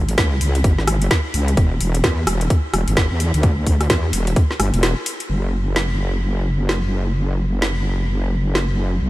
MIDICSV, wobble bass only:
0, 0, Header, 1, 2, 480
1, 0, Start_track
1, 0, Tempo, 465116
1, 1622, Time_signature, 4, 2, 24, 8
1, 9389, End_track
2, 0, Start_track
2, 0, Title_t, "Wobble bass"
2, 0, Program_c, 0, 39
2, 0, Note_on_c, 0, 32, 99
2, 168, Note_off_c, 0, 32, 0
2, 183, Note_on_c, 0, 37, 94
2, 408, Note_off_c, 0, 37, 0
2, 423, Note_on_c, 0, 37, 94
2, 648, Note_off_c, 0, 37, 0
2, 663, Note_on_c, 0, 32, 92
2, 1128, Note_off_c, 0, 32, 0
2, 1383, Note_on_c, 0, 37, 97
2, 1608, Note_off_c, 0, 37, 0
2, 1623, Note_on_c, 0, 28, 98
2, 1848, Note_off_c, 0, 28, 0
2, 1862, Note_on_c, 0, 28, 99
2, 2087, Note_off_c, 0, 28, 0
2, 2103, Note_on_c, 0, 40, 90
2, 2328, Note_off_c, 0, 40, 0
2, 2342, Note_on_c, 0, 28, 92
2, 2567, Note_off_c, 0, 28, 0
2, 2822, Note_on_c, 0, 28, 94
2, 2944, Note_off_c, 0, 28, 0
2, 2968, Note_on_c, 0, 31, 94
2, 3185, Note_off_c, 0, 31, 0
2, 3208, Note_on_c, 0, 40, 90
2, 3425, Note_off_c, 0, 40, 0
2, 3448, Note_on_c, 0, 38, 90
2, 3767, Note_off_c, 0, 38, 0
2, 3783, Note_on_c, 0, 38, 98
2, 4008, Note_off_c, 0, 38, 0
2, 4023, Note_on_c, 0, 40, 95
2, 4248, Note_off_c, 0, 40, 0
2, 4262, Note_on_c, 0, 28, 91
2, 4487, Note_off_c, 0, 28, 0
2, 4743, Note_on_c, 0, 31, 94
2, 4865, Note_off_c, 0, 31, 0
2, 4888, Note_on_c, 0, 28, 98
2, 5105, Note_off_c, 0, 28, 0
2, 5463, Note_on_c, 0, 30, 81
2, 9284, Note_off_c, 0, 30, 0
2, 9303, Note_on_c, 0, 35, 82
2, 9389, Note_off_c, 0, 35, 0
2, 9389, End_track
0, 0, End_of_file